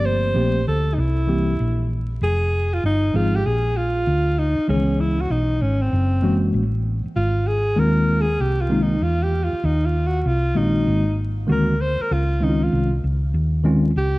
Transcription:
0.00 0.33 G1 loud
0.00 0.31 F3 medium
0.00 0.31 A3 medium
0.00 0.31 A#3 medium
0.00 0.31 C4 medium
0.00 0.35 G4 medium
0.06 0.67 C5 loud
0.34 0.65 A#1 medium
0.34 0.59 F3 medium
0.34 0.59 A3 medium
0.34 0.60 A#3 medium
0.34 0.60 C4 medium
0.34 0.60 G4 medium
0.67 0.96 D2 medium
0.67 0.96 A4 medium
0.94 1.56 C2 loud
0.94 1.01 D#4 medium
0.99 1.91 E4 medium
1.27 1.52 E3 medium
1.27 1.52 G3 medium
1.27 1.53 A#3 medium
1.27 1.53 C4 medium
1.27 1.53 G4 medium
1.60 2.18 A#1 medium
2.21 2.80 F1 loud
2.21 2.75 G#4 loud
2.74 2.83 F4 medium
2.84 3.12 G1 medium
2.84 3.17 D#4 medium
3.14 3.43 G#1 medium
3.14 3.38 F3 medium
3.14 3.38 G#3 medium
3.14 3.39 C4 medium
3.14 3.39 D#4 soft
3.14 3.38 F4 medium
3.14 3.39 G#4 medium
3.36 3.47 G4 medium
3.46 4.04 A#1 medium
3.46 3.78 G#4 loud
3.77 4.40 F4 medium
4.07 4.55 D2 medium
4.39 4.69 D#4 medium
4.58 muted fingered electric bass stroke soft
4.68 5.27 C#2 loud
4.68 4.77 D#3 medium
4.68 5.15 G#3 medium
4.68 5.16 B3 medium
4.68 5.02 C#4 medium
4.68 5.16 C#4 medium
4.68 5.16 G#4 medium
4.74 5.18 E3 medium
5.00 5.23 E4 medium
5.21 5.33 F#4 medium
5.30 5.59 B1 medium
5.30 5.63 D#4 medium
5.61 5.91 G#1 medium
5.61 5.83 C#4 medium
5.82 6.43 C4 medium
5.93 6.51 F#1 medium
6.22 6.62 E3 medium
6.22 6.62 G#3 medium
6.22 6.62 A#3 medium
6.22 6.62 C#4 medium
6.22 6.62 F#4 medium
6.54 7.02 A1 medium
7.06 muted fingered electric bass stroke soft
7.16 7.74 G#1 loud
7.16 7.49 F4 medium
7.47 7.81 G#4 loud
7.76 8.37 D#2 medium
7.76 8.24 D#3 medium
7.76 8.24 G#3 medium
7.76 8.24 A#3 medium
7.76 8.25 C4 medium
7.76 8.25 F4 medium
7.76 8.23 A#4 loud
8.21 8.42 G#4 loud
8.40 8.99 C2 medium
8.40 8.63 G4 loud
8.61 8.84 F4 medium
8.69 8.94 D#3 medium
8.69 8.95 G#3 medium
8.69 8.95 A#3 medium
8.69 8.95 C4 medium
8.69 8.95 D#4 medium
8.82 9.05 D#4 medium
9.01 9.50 E2 medium
9.01 9.25 F4 medium
9.23 9.46 G4 medium
9.44 9.67 F4 medium
9.53 muted fingered electric bass stroke soft
9.64 10.22 D#2 medium
9.64 9.87 D#4 medium
9.86 10.08 F4 medium
10.07 10.22 F#4 medium
10.22 10.55 C2 medium
10.22 10.28 F#4 medium
10.27 10.59 F4 medium
10.55 10.86 A#1 medium
10.55 11.02 D#3 medium
10.55 11.03 G#3 medium
10.55 11.03 A#3 medium
10.55 11.03 C4 medium
10.55 11.18 D#4 medium
10.55 11.03 F#4 medium
10.87 11.46 G#1 medium
11.47 11.98 D2 medium
11.47 11.72 D#3 medium
11.47 11.73 G#3 medium
11.47 11.73 A#3 medium
11.47 11.73 C4 medium
11.47 11.74 F#4 medium
11.52 11.83 A#4 medium
11.81 12.04 C5 medium
12.02 12.14 A#4 medium
12.11 12.70 C#2 medium
12.11 12.45 F4 medium
12.40 12.88 D#3 medium
12.40 12.88 G#3 medium
12.40 12.88 C4 medium
12.40 12.89 C#4 medium
12.40 12.65 D#4 medium
12.40 12.50 E4 medium
12.49 12.92 F4 medium
12.64 12.94 F4 medium
12.73 13.02 C2 medium
13.04 13.33 C#2 medium
13.34 13.93 D#2 medium
13.64 13.89 D#3 medium
13.64 13.89 G#3 medium
13.64 13.90 C4 medium
13.64 13.90 C#4 medium
13.64 13.90 F4 medium
13.96 14.19 C#2 medium
13.96 14.19 G4 loud

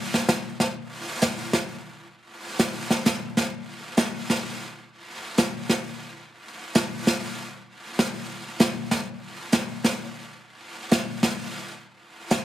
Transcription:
0.14 snare soft
0.28 snare medium
0.28 hi-hat pedal soft
0.60 snare soft
0.76 brush sweep medium
1.22 snare soft
1.22 hi-hat pedal medium
1.53 snare soft
2.14 brush sweep soft
2.59 snare medium
2.59 hi-hat pedal soft
2.90 snare soft
3.06 snare medium
3.06 hi-hat pedal soft
3.37 snare soft
3.51 brush sweep soft
3.97 snare medium
3.97 hi-hat pedal medium
4.30 snare soft
4.92 brush sweep soft
5.38 snare medium
5.38 hi-hat pedal medium
5.69 snare soft
6.30 brush sweep medium
6.75 snare medium
6.75 hi-hat pedal soft
7.07 snare soft
7.68 brush sweep soft
7.99 snare medium
8.60 snare medium
8.60 hi-hat pedal medium
8.91 snare soft
9.07 brush sweep soft
9.52 snare medium
9.52 hi-hat pedal medium
9.84 snare soft
10.46 brush sweep soft
10.91 snare medium
10.91 hi-hat pedal medium
11.23 snare soft
11.85 brush sweep soft
12.31 snare medium
12.31 hi-hat pedal medium

